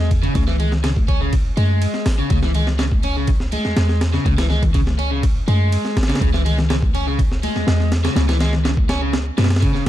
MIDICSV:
0, 0, Header, 1, 4, 480
1, 0, Start_track
1, 0, Key_signature, 4, "minor"
1, 0, Tempo, 487805
1, 348, Time_signature, 4, 2, 24, 8
1, 9731, End_track
2, 0, Start_track
2, 0, Title_t, "Overdriven electric guitar"
2, 0, Program_c, 0, 29
2, 230, Note_on_c, 0, 49, 105
2, 333, Note_off_c, 0, 49, 0
2, 345, Note_on_c, 0, 49, 82
2, 426, Note_off_c, 0, 49, 0
2, 472, Note_on_c, 0, 52, 104
2, 547, Note_off_c, 0, 52, 0
2, 585, Note_on_c, 0, 56, 79
2, 703, Note_off_c, 0, 56, 0
2, 828, Note_on_c, 0, 49, 78
2, 876, Note_off_c, 0, 49, 0
2, 1069, Note_on_c, 0, 61, 82
2, 1179, Note_off_c, 0, 61, 0
2, 1194, Note_on_c, 0, 49, 100
2, 1304, Note_off_c, 0, 49, 0
2, 1549, Note_on_c, 0, 56, 78
2, 2017, Note_off_c, 0, 56, 0
2, 2153, Note_on_c, 0, 49, 106
2, 2263, Note_off_c, 0, 49, 0
2, 2273, Note_on_c, 0, 49, 87
2, 2350, Note_off_c, 0, 49, 0
2, 2394, Note_on_c, 0, 52, 103
2, 2468, Note_off_c, 0, 52, 0
2, 2509, Note_on_c, 0, 56, 80
2, 2625, Note_off_c, 0, 56, 0
2, 2747, Note_on_c, 0, 49, 82
2, 2795, Note_off_c, 0, 49, 0
2, 2990, Note_on_c, 0, 61, 81
2, 3100, Note_off_c, 0, 61, 0
2, 3116, Note_on_c, 0, 49, 99
2, 3225, Note_off_c, 0, 49, 0
2, 3473, Note_on_c, 0, 56, 77
2, 3939, Note_off_c, 0, 56, 0
2, 4071, Note_on_c, 0, 49, 105
2, 4176, Note_off_c, 0, 49, 0
2, 4188, Note_on_c, 0, 49, 86
2, 4267, Note_off_c, 0, 49, 0
2, 4309, Note_on_c, 0, 52, 108
2, 4386, Note_off_c, 0, 52, 0
2, 4427, Note_on_c, 0, 56, 79
2, 4544, Note_off_c, 0, 56, 0
2, 4669, Note_on_c, 0, 49, 85
2, 4716, Note_off_c, 0, 49, 0
2, 4907, Note_on_c, 0, 61, 82
2, 5018, Note_off_c, 0, 61, 0
2, 5030, Note_on_c, 0, 49, 103
2, 5142, Note_off_c, 0, 49, 0
2, 5390, Note_on_c, 0, 56, 77
2, 5857, Note_off_c, 0, 56, 0
2, 5995, Note_on_c, 0, 49, 105
2, 6101, Note_off_c, 0, 49, 0
2, 6113, Note_on_c, 0, 49, 86
2, 6190, Note_off_c, 0, 49, 0
2, 6235, Note_on_c, 0, 52, 102
2, 6309, Note_off_c, 0, 52, 0
2, 6347, Note_on_c, 0, 56, 82
2, 6464, Note_off_c, 0, 56, 0
2, 6593, Note_on_c, 0, 49, 83
2, 6638, Note_off_c, 0, 49, 0
2, 6834, Note_on_c, 0, 61, 82
2, 6942, Note_off_c, 0, 61, 0
2, 6957, Note_on_c, 0, 49, 106
2, 7065, Note_off_c, 0, 49, 0
2, 7317, Note_on_c, 0, 56, 80
2, 7781, Note_off_c, 0, 56, 0
2, 7911, Note_on_c, 0, 49, 102
2, 8016, Note_off_c, 0, 49, 0
2, 8028, Note_on_c, 0, 49, 83
2, 8107, Note_off_c, 0, 49, 0
2, 8150, Note_on_c, 0, 52, 112
2, 8226, Note_off_c, 0, 52, 0
2, 8269, Note_on_c, 0, 56, 84
2, 8385, Note_off_c, 0, 56, 0
2, 8509, Note_on_c, 0, 49, 84
2, 8556, Note_off_c, 0, 49, 0
2, 8749, Note_on_c, 0, 61, 81
2, 8859, Note_off_c, 0, 61, 0
2, 8872, Note_on_c, 0, 49, 103
2, 8983, Note_off_c, 0, 49, 0
2, 9229, Note_on_c, 0, 47, 111
2, 9308, Note_off_c, 0, 47, 0
2, 9468, Note_on_c, 0, 49, 83
2, 9577, Note_off_c, 0, 49, 0
2, 9589, Note_on_c, 0, 49, 78
2, 9695, Note_off_c, 0, 49, 0
2, 9731, End_track
3, 0, Start_track
3, 0, Title_t, "808-style bass"
3, 0, Program_c, 1, 38
3, 0, Note_on_c, 1, 40, 89
3, 280, Note_off_c, 1, 40, 0
3, 348, Note_on_c, 1, 37, 103
3, 1481, Note_off_c, 1, 37, 0
3, 1545, Note_on_c, 1, 42, 91
3, 1839, Note_off_c, 1, 42, 0
3, 2028, Note_on_c, 1, 32, 88
3, 2184, Note_off_c, 1, 32, 0
3, 2266, Note_on_c, 1, 37, 104
3, 3519, Note_off_c, 1, 37, 0
3, 3590, Note_on_c, 1, 40, 46
3, 3684, Note_off_c, 1, 40, 0
3, 3705, Note_on_c, 1, 40, 86
3, 4119, Note_off_c, 1, 40, 0
3, 4189, Note_on_c, 1, 37, 106
3, 5321, Note_off_c, 1, 37, 0
3, 5389, Note_on_c, 1, 42, 98
3, 5681, Note_off_c, 1, 42, 0
3, 5872, Note_on_c, 1, 32, 87
3, 6026, Note_off_c, 1, 32, 0
3, 6114, Note_on_c, 1, 37, 106
3, 7363, Note_off_c, 1, 37, 0
3, 7433, Note_on_c, 1, 40, 47
3, 7526, Note_off_c, 1, 40, 0
3, 7547, Note_on_c, 1, 40, 88
3, 7960, Note_off_c, 1, 40, 0
3, 8028, Note_on_c, 1, 37, 108
3, 9160, Note_off_c, 1, 37, 0
3, 9229, Note_on_c, 1, 42, 98
3, 9521, Note_off_c, 1, 42, 0
3, 9731, End_track
4, 0, Start_track
4, 0, Title_t, "Drums"
4, 107, Note_on_c, 9, 36, 100
4, 109, Note_on_c, 9, 51, 69
4, 206, Note_off_c, 9, 36, 0
4, 207, Note_off_c, 9, 51, 0
4, 231, Note_on_c, 9, 51, 45
4, 329, Note_off_c, 9, 51, 0
4, 346, Note_on_c, 9, 51, 86
4, 347, Note_on_c, 9, 36, 117
4, 347, Note_on_c, 9, 63, 99
4, 444, Note_off_c, 9, 51, 0
4, 445, Note_off_c, 9, 36, 0
4, 446, Note_off_c, 9, 63, 0
4, 469, Note_on_c, 9, 38, 43
4, 568, Note_off_c, 9, 38, 0
4, 588, Note_on_c, 9, 51, 70
4, 593, Note_on_c, 9, 64, 95
4, 686, Note_off_c, 9, 51, 0
4, 691, Note_off_c, 9, 64, 0
4, 710, Note_on_c, 9, 38, 49
4, 710, Note_on_c, 9, 64, 90
4, 808, Note_off_c, 9, 38, 0
4, 808, Note_off_c, 9, 64, 0
4, 825, Note_on_c, 9, 38, 112
4, 825, Note_on_c, 9, 51, 86
4, 923, Note_off_c, 9, 38, 0
4, 923, Note_off_c, 9, 51, 0
4, 950, Note_on_c, 9, 36, 99
4, 957, Note_on_c, 9, 63, 62
4, 1048, Note_off_c, 9, 36, 0
4, 1055, Note_off_c, 9, 63, 0
4, 1066, Note_on_c, 9, 51, 66
4, 1067, Note_on_c, 9, 36, 93
4, 1165, Note_off_c, 9, 36, 0
4, 1165, Note_off_c, 9, 51, 0
4, 1306, Note_on_c, 9, 51, 89
4, 1307, Note_on_c, 9, 36, 111
4, 1404, Note_off_c, 9, 51, 0
4, 1405, Note_off_c, 9, 36, 0
4, 1547, Note_on_c, 9, 51, 74
4, 1549, Note_on_c, 9, 63, 93
4, 1645, Note_off_c, 9, 51, 0
4, 1647, Note_off_c, 9, 63, 0
4, 1787, Note_on_c, 9, 51, 90
4, 1885, Note_off_c, 9, 51, 0
4, 1908, Note_on_c, 9, 38, 43
4, 2007, Note_off_c, 9, 38, 0
4, 2025, Note_on_c, 9, 38, 116
4, 2025, Note_on_c, 9, 46, 79
4, 2123, Note_off_c, 9, 38, 0
4, 2123, Note_off_c, 9, 46, 0
4, 2264, Note_on_c, 9, 51, 91
4, 2267, Note_on_c, 9, 36, 111
4, 2272, Note_on_c, 9, 63, 99
4, 2363, Note_off_c, 9, 51, 0
4, 2365, Note_off_c, 9, 36, 0
4, 2370, Note_off_c, 9, 63, 0
4, 2387, Note_on_c, 9, 38, 55
4, 2486, Note_off_c, 9, 38, 0
4, 2505, Note_on_c, 9, 51, 70
4, 2517, Note_on_c, 9, 64, 86
4, 2604, Note_off_c, 9, 51, 0
4, 2615, Note_off_c, 9, 64, 0
4, 2629, Note_on_c, 9, 38, 59
4, 2639, Note_on_c, 9, 64, 78
4, 2728, Note_off_c, 9, 38, 0
4, 2737, Note_off_c, 9, 64, 0
4, 2744, Note_on_c, 9, 38, 110
4, 2744, Note_on_c, 9, 51, 83
4, 2843, Note_off_c, 9, 38, 0
4, 2843, Note_off_c, 9, 51, 0
4, 2869, Note_on_c, 9, 36, 101
4, 2869, Note_on_c, 9, 63, 64
4, 2967, Note_off_c, 9, 36, 0
4, 2967, Note_off_c, 9, 63, 0
4, 2984, Note_on_c, 9, 51, 68
4, 3082, Note_off_c, 9, 51, 0
4, 3222, Note_on_c, 9, 51, 94
4, 3226, Note_on_c, 9, 36, 113
4, 3320, Note_off_c, 9, 51, 0
4, 3324, Note_off_c, 9, 36, 0
4, 3347, Note_on_c, 9, 38, 41
4, 3446, Note_off_c, 9, 38, 0
4, 3464, Note_on_c, 9, 51, 73
4, 3466, Note_on_c, 9, 63, 102
4, 3562, Note_off_c, 9, 51, 0
4, 3565, Note_off_c, 9, 63, 0
4, 3590, Note_on_c, 9, 38, 45
4, 3689, Note_off_c, 9, 38, 0
4, 3705, Note_on_c, 9, 38, 127
4, 3705, Note_on_c, 9, 51, 94
4, 3804, Note_off_c, 9, 38, 0
4, 3804, Note_off_c, 9, 51, 0
4, 3830, Note_on_c, 9, 38, 45
4, 3929, Note_off_c, 9, 38, 0
4, 3948, Note_on_c, 9, 38, 102
4, 3948, Note_on_c, 9, 51, 79
4, 4046, Note_off_c, 9, 38, 0
4, 4046, Note_off_c, 9, 51, 0
4, 4072, Note_on_c, 9, 38, 43
4, 4171, Note_off_c, 9, 38, 0
4, 4189, Note_on_c, 9, 36, 89
4, 4190, Note_on_c, 9, 51, 65
4, 4192, Note_on_c, 9, 63, 83
4, 4287, Note_off_c, 9, 36, 0
4, 4289, Note_off_c, 9, 51, 0
4, 4290, Note_off_c, 9, 63, 0
4, 4313, Note_on_c, 9, 38, 108
4, 4313, Note_on_c, 9, 51, 82
4, 4411, Note_off_c, 9, 38, 0
4, 4411, Note_off_c, 9, 51, 0
4, 4427, Note_on_c, 9, 64, 86
4, 4429, Note_on_c, 9, 38, 44
4, 4525, Note_off_c, 9, 64, 0
4, 4527, Note_off_c, 9, 38, 0
4, 4552, Note_on_c, 9, 36, 90
4, 4552, Note_on_c, 9, 64, 94
4, 4553, Note_on_c, 9, 51, 59
4, 4650, Note_off_c, 9, 36, 0
4, 4651, Note_off_c, 9, 51, 0
4, 4651, Note_off_c, 9, 64, 0
4, 4667, Note_on_c, 9, 51, 74
4, 4669, Note_on_c, 9, 36, 104
4, 4765, Note_off_c, 9, 51, 0
4, 4767, Note_off_c, 9, 36, 0
4, 4792, Note_on_c, 9, 63, 64
4, 4793, Note_on_c, 9, 38, 50
4, 4890, Note_off_c, 9, 63, 0
4, 4891, Note_off_c, 9, 38, 0
4, 4908, Note_on_c, 9, 51, 58
4, 5006, Note_off_c, 9, 51, 0
4, 5149, Note_on_c, 9, 51, 89
4, 5150, Note_on_c, 9, 36, 113
4, 5248, Note_off_c, 9, 36, 0
4, 5248, Note_off_c, 9, 51, 0
4, 5391, Note_on_c, 9, 51, 67
4, 5393, Note_on_c, 9, 63, 92
4, 5489, Note_off_c, 9, 51, 0
4, 5491, Note_off_c, 9, 63, 0
4, 5632, Note_on_c, 9, 51, 98
4, 5731, Note_off_c, 9, 51, 0
4, 5755, Note_on_c, 9, 38, 45
4, 5854, Note_off_c, 9, 38, 0
4, 5872, Note_on_c, 9, 38, 90
4, 5872, Note_on_c, 9, 51, 65
4, 5933, Note_off_c, 9, 38, 0
4, 5933, Note_off_c, 9, 51, 0
4, 5933, Note_on_c, 9, 38, 87
4, 5933, Note_on_c, 9, 51, 67
4, 5998, Note_off_c, 9, 38, 0
4, 5998, Note_off_c, 9, 51, 0
4, 5998, Note_on_c, 9, 38, 86
4, 5998, Note_on_c, 9, 51, 67
4, 6056, Note_off_c, 9, 38, 0
4, 6056, Note_off_c, 9, 51, 0
4, 6056, Note_on_c, 9, 38, 94
4, 6056, Note_on_c, 9, 51, 68
4, 6110, Note_on_c, 9, 63, 77
4, 6113, Note_on_c, 9, 36, 113
4, 6117, Note_off_c, 9, 51, 0
4, 6117, Note_on_c, 9, 51, 92
4, 6154, Note_off_c, 9, 38, 0
4, 6208, Note_off_c, 9, 63, 0
4, 6212, Note_off_c, 9, 36, 0
4, 6215, Note_off_c, 9, 51, 0
4, 6241, Note_on_c, 9, 38, 57
4, 6339, Note_off_c, 9, 38, 0
4, 6356, Note_on_c, 9, 64, 86
4, 6357, Note_on_c, 9, 51, 75
4, 6454, Note_off_c, 9, 64, 0
4, 6455, Note_off_c, 9, 51, 0
4, 6468, Note_on_c, 9, 64, 92
4, 6480, Note_on_c, 9, 38, 56
4, 6567, Note_off_c, 9, 64, 0
4, 6578, Note_off_c, 9, 38, 0
4, 6595, Note_on_c, 9, 38, 120
4, 6595, Note_on_c, 9, 51, 86
4, 6693, Note_off_c, 9, 38, 0
4, 6693, Note_off_c, 9, 51, 0
4, 6716, Note_on_c, 9, 36, 102
4, 6716, Note_on_c, 9, 63, 60
4, 6814, Note_off_c, 9, 36, 0
4, 6815, Note_off_c, 9, 63, 0
4, 6835, Note_on_c, 9, 51, 65
4, 6933, Note_off_c, 9, 51, 0
4, 7073, Note_on_c, 9, 36, 114
4, 7077, Note_on_c, 9, 51, 86
4, 7172, Note_off_c, 9, 36, 0
4, 7175, Note_off_c, 9, 51, 0
4, 7199, Note_on_c, 9, 38, 39
4, 7297, Note_off_c, 9, 38, 0
4, 7314, Note_on_c, 9, 51, 75
4, 7315, Note_on_c, 9, 63, 89
4, 7412, Note_off_c, 9, 51, 0
4, 7414, Note_off_c, 9, 63, 0
4, 7438, Note_on_c, 9, 38, 44
4, 7536, Note_off_c, 9, 38, 0
4, 7554, Note_on_c, 9, 38, 127
4, 7554, Note_on_c, 9, 51, 94
4, 7653, Note_off_c, 9, 38, 0
4, 7653, Note_off_c, 9, 51, 0
4, 7678, Note_on_c, 9, 38, 44
4, 7776, Note_off_c, 9, 38, 0
4, 7792, Note_on_c, 9, 38, 104
4, 7792, Note_on_c, 9, 51, 81
4, 7890, Note_off_c, 9, 38, 0
4, 7890, Note_off_c, 9, 51, 0
4, 7918, Note_on_c, 9, 38, 103
4, 7918, Note_on_c, 9, 51, 81
4, 8017, Note_off_c, 9, 38, 0
4, 8017, Note_off_c, 9, 51, 0
4, 8031, Note_on_c, 9, 63, 85
4, 8034, Note_on_c, 9, 38, 111
4, 8034, Note_on_c, 9, 51, 83
4, 8130, Note_off_c, 9, 63, 0
4, 8132, Note_off_c, 9, 38, 0
4, 8132, Note_off_c, 9, 51, 0
4, 8157, Note_on_c, 9, 38, 110
4, 8157, Note_on_c, 9, 51, 84
4, 8255, Note_off_c, 9, 38, 0
4, 8255, Note_off_c, 9, 51, 0
4, 8267, Note_on_c, 9, 64, 79
4, 8270, Note_on_c, 9, 38, 103
4, 8270, Note_on_c, 9, 51, 81
4, 8365, Note_off_c, 9, 64, 0
4, 8368, Note_off_c, 9, 38, 0
4, 8368, Note_off_c, 9, 51, 0
4, 8393, Note_on_c, 9, 38, 51
4, 8398, Note_on_c, 9, 64, 85
4, 8492, Note_off_c, 9, 38, 0
4, 8496, Note_off_c, 9, 64, 0
4, 8512, Note_on_c, 9, 38, 108
4, 8512, Note_on_c, 9, 51, 80
4, 8610, Note_off_c, 9, 38, 0
4, 8610, Note_off_c, 9, 51, 0
4, 8627, Note_on_c, 9, 63, 63
4, 8633, Note_on_c, 9, 36, 97
4, 8726, Note_off_c, 9, 63, 0
4, 8731, Note_off_c, 9, 36, 0
4, 8749, Note_on_c, 9, 38, 106
4, 8749, Note_on_c, 9, 51, 75
4, 8847, Note_off_c, 9, 38, 0
4, 8847, Note_off_c, 9, 51, 0
4, 8987, Note_on_c, 9, 38, 109
4, 8987, Note_on_c, 9, 51, 81
4, 9086, Note_off_c, 9, 38, 0
4, 9086, Note_off_c, 9, 51, 0
4, 9229, Note_on_c, 9, 38, 95
4, 9229, Note_on_c, 9, 51, 70
4, 9233, Note_on_c, 9, 63, 86
4, 9291, Note_off_c, 9, 38, 0
4, 9291, Note_off_c, 9, 51, 0
4, 9291, Note_on_c, 9, 38, 88
4, 9291, Note_on_c, 9, 51, 71
4, 9331, Note_off_c, 9, 63, 0
4, 9352, Note_off_c, 9, 38, 0
4, 9352, Note_off_c, 9, 51, 0
4, 9352, Note_on_c, 9, 38, 91
4, 9352, Note_on_c, 9, 51, 70
4, 9410, Note_off_c, 9, 38, 0
4, 9410, Note_off_c, 9, 51, 0
4, 9410, Note_on_c, 9, 38, 91
4, 9410, Note_on_c, 9, 51, 73
4, 9468, Note_on_c, 9, 36, 105
4, 9470, Note_off_c, 9, 51, 0
4, 9470, Note_on_c, 9, 51, 85
4, 9508, Note_off_c, 9, 38, 0
4, 9567, Note_off_c, 9, 36, 0
4, 9569, Note_off_c, 9, 51, 0
4, 9593, Note_on_c, 9, 38, 35
4, 9691, Note_off_c, 9, 38, 0
4, 9731, End_track
0, 0, End_of_file